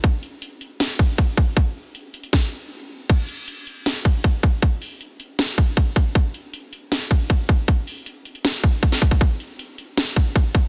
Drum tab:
CC |----------------|----------------|x---------------|----------------|
HH |x-x-x-x-x-x-x---|x---x-xx--------|x-x-x-x-x-x-x---|x-o-x-x-x-x-x-x-|
SD |--------o-------|--------o-------|--------o-------|--------o-------|
BD |o---------o-o-o-|o-------o-------|o---------o-o-o-|o---------o-o-o-|

CC |----------------|----------------|----------------|
HH |x-x-x-x-x-x-x---|x-o-x-xxx-x-xxx-|x-x-x-x-x-x-x---|
SD |--------o-------|--------o----o--|--------o-------|
BD |o---------o-o-o-|o---------o-o-oo|o---------o-o-o-|